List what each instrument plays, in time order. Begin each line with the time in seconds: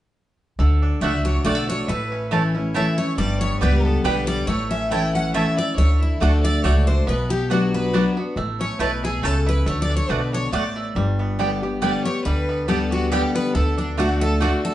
0.59 upright bass D2, steel-string acoustic guitar D3, five-string banjo A3
0.82 five-string banjo D4
1.01 upright bass C#2, steel-string acoustic guitar D3 A3 D4 F#4 E5, mandolin A3 F#4 D5 F#5, five-string banjo A3, fiddle E5
1.24 five-string banjo D4, steel-string acoustic guitar D4 F#4 C#5, fiddle C#5
1.44 upright bass B1, steel-string acoustic guitar D3 A3 D4 F#4 D5, five-string banjo G3, mandolin A3 F#4 D5 F#5, fiddle D5
1.55 five-string banjo A3
1.68 five-string banjo D4, steel-string acoustic guitar D4 F#4 C#5, fiddle C#5
1.88 upright bass A1, steel-string acoustic guitar A2 B4, five-string banjo A3, fiddle B4
2.12 five-string banjo C#4
2.31 steel-string acoustic guitar E3 A3 C#4 E4, mandolin A3 E4 C#5 A5, five-string banjo E4
2.55 five-string banjo C#4, steel-string acoustic guitar C#4 E4
2.74 steel-string acoustic guitar E3 A3 C#4 E4 E5, mandolin A3 E4 C#5 A5, five-string banjo E4, fiddle E5
2.98 five-string banjo A3, steel-string acoustic guitar C#4 E4 C#5, fiddle C#5
3.17 upright bass G1, steel-string acoustic guitar G2 D5, five-string banjo G3, fiddle D5
3.40 five-string banjo B3, fiddle C#5, steel-string acoustic guitar C#5
3.60 upright bass C#2, steel-string acoustic guitar G3 B3 G4 B4, mandolin B3 G4 D5 G5, five-string banjo D4, fiddle B4
3.84 five-string banjo B3, fiddle A4, steel-string acoustic guitar A4
4.04 upright bass B1, steel-string acoustic guitar D3 G3 B3 G4 B4, mandolin B3 G4 D5 G5, five-string banjo D4, fiddle B4
4.27 five-string banjo G3, fiddle D5, steel-string acoustic guitar D5
4.47 upright bass A1, steel-string acoustic guitar A2 C#5, five-string banjo A3, fiddle C#5
4.71 five-string banjo C#4, fiddle E5, steel-string acoustic guitar E5
4.91 steel-string acoustic guitar E3 A3 C#4 E4 G5, mandolin A3 E4 C#5 A5, five-string banjo E4, fiddle G5
5.14 five-string banjo C#4, fiddle F#5, steel-string acoustic guitar F#5
5.34 steel-string acoustic guitar E3 A3 C#4 E4 E5, mandolin A3 E4 C#5 A5, five-string banjo E4, fiddle E5
5.57 five-string banjo A3, steel-string acoustic guitar E4 D5, fiddle D5
5.76 upright bass D2, steel-string acoustic guitar D3 C#5, five-string banjo A3, fiddle C#5
6.00 fiddle E4, steel-string acoustic guitar E4
6.20 upright bass D2, steel-string acoustic guitar D3 A3 D4 F#4 A4, mandolin A3 F#4 D5 F#5, five-string banjo D4, fiddle A4
6.43 five-string banjo A3, fiddle D5, steel-string acoustic guitar D5
6.64 upright bass C#2, steel-string acoustic guitar D3 A3 D4 F#4 C#5, mandolin A3 F#4 D5 F#5, five-string banjo D4, fiddle C#5
6.87 five-string banjo D4, steel-string acoustic guitar D4 F#4 C5, fiddle C5
7.07 upright bass B1, steel-string acoustic guitar B2 B4, five-string banjo B3, fiddle B4
7.30 five-string banjo B3, fiddle G4, steel-string acoustic guitar G4
7.50 steel-string acoustic guitar F#3 B3 D4 F#4, mandolin B3 F#4 D5 F#5, five-string banjo D4, fiddle F#4
7.74 five-string banjo B3, fiddle B4, steel-string acoustic guitar B4
7.93 steel-string acoustic guitar F#3 B3 D4 F#4, mandolin B3 F#4 D5 F#5, five-string banjo D4
8.17 five-string banjo B3, steel-string acoustic guitar D4 F#4
8.36 upright bass A1, steel-string acoustic guitar A2, five-string banjo A3
8.60 five-string banjo C#4, fiddle C#5, steel-string acoustic guitar C#5
8.79 upright bass B1, steel-string acoustic guitar B2 B4, mandolin A3 E4 C#5 A5, five-string banjo E4, fiddle B4
9.04 five-string banjo A3, fiddle G#4, steel-string acoustic guitar G#4
9.23 upright bass C#2, steel-string acoustic guitar C#3 A4, mandolin A3 E4 C#5 A5, five-string banjo C#4, fiddle A4
9.47 five-string banjo E4, fiddle B4, steel-string acoustic guitar B4
9.66 upright bass D2, steel-string acoustic guitar D3 C#5, five-string banjo A3, fiddle C#5
9.82 fiddle D5, steel-string acoustic guitar D5
9.89 five-string banjo D4
9.96 fiddle C#5, steel-string acoustic guitar C#5
10.09 upright bass B1, steel-string acoustic guitar B2 B4, mandolin A3 F#4 D5 F#5, five-string banjo D4, fiddle B4
10.33 five-string banjo D4, fiddle C#5, steel-string acoustic guitar C#5
10.52 upright bass A1, steel-string acoustic guitar A2 D5, mandolin A3 F#4 D5 F#5, five-string banjo D4, fiddle D5
10.76 five-string banjo A3
10.95 upright bass G1, steel-string acoustic guitar G2, five-string banjo G3
11.19 five-string banjo B3
11.39 steel-string acoustic guitar D3 G3 B3 G4, mandolin B3 G4 D5 G5, five-string banjo D4
11.62 steel-string acoustic guitar B3 G4, five-string banjo G4
11.82 steel-string acoustic guitar D3 G3 B3 G4 D5, five-string banjo G3, mandolin B3 G4 D5 G5, fiddle D5
12.04 steel-string acoustic guitar B3 G4 C#5, five-string banjo G4, fiddle C#5
12.24 upright bass D2, steel-string acoustic guitar D3 B4, five-string banjo G3, fiddle B4
12.49 five-string banjo B3
12.68 steel-string acoustic guitar D3 G3 B3 G4 A4, mandolin B3 G4 D5 G5, five-string banjo G4, fiddle A4
12.91 five-string banjo D4, fiddle F#4, steel-string acoustic guitar F#4
13.11 steel-string acoustic guitar D3 G3 B3 G4, five-string banjo G3, mandolin B3 G4 D5 G5, fiddle G4
13.35 five-string banjo B3, fiddle B4, steel-string acoustic guitar B4
13.55 upright bass D2, steel-string acoustic guitar D3 A4, five-string banjo A3, fiddle A4
13.78 five-string banjo D4, steel-string acoustic guitar D4, fiddle D4
13.98 steel-string acoustic guitar D3 A3 D4 F#4, mandolin A3 F#4 D5 F#5, five-string banjo D4, fiddle F#4
14.21 five-string banjo A3, steel-string acoustic guitar A4, fiddle A4
14.40 steel-string acoustic guitar D3 A3 D4 F#4, mandolin A3 F#4 D5 F#5, five-string banjo D4, fiddle F#4
14.65 five-string banjo A3, steel-string acoustic guitar A4, fiddle A4